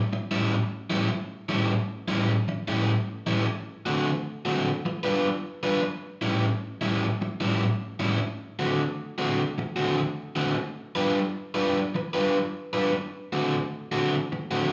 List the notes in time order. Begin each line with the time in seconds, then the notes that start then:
0.13 muted overdriven electric guitar stroke
0.31 A2 G3 C#4 E4
0.90 A2 G3 C#4 E4
1.09 muted overdriven electric guitar stroke
1.49 A2 G3 C#4 E4
2.08 A2 G3 C#4 E4
2.48 muted overdriven electric guitar stroke
2.68 A2 G3 C#4 E4
3.27 A2 G3 C#4 E4
3.46 muted overdriven electric guitar stroke
3.86 D3 A3 C4 F#4
4.45 D3 A3 C4 F#4
4.86 muted overdriven electric guitar stroke
5.03 G3 D4 F4 B4
5.63 G3 D4 F4 B4
5.82 muted overdriven electric guitar stroke
6.22 A2 G3 C#4 E4
6.81 A2 G3 C#4 E4
7.21 muted overdriven electric guitar stroke
7.41 A2 G3 C#4 E4
8.00 A2 G3 C#4 E4
8.19 muted overdriven electric guitar stroke
8.59 D3 A3 C4 F#4
9.18 D3 A3 C4 F#4
9.58 muted overdriven electric guitar stroke
9.76 D3 A3 C4 F#4
10.36 D3 A3 C4 F#4
10.55 muted overdriven electric guitar stroke
10.95 G3 D4 F4 B4
11.54 G3 D4 F4 B4
11.95 muted overdriven electric guitar stroke
12.14 G3 D4 F4 B4
12.73 G3 D4 F4 B4
12.92 muted overdriven electric guitar stroke
13.33 D3 A3 C4 F#4
13.92 D3 A3 C4 F#4
14.32 muted overdriven electric guitar stroke
14.51 D3 A3 C4 F#4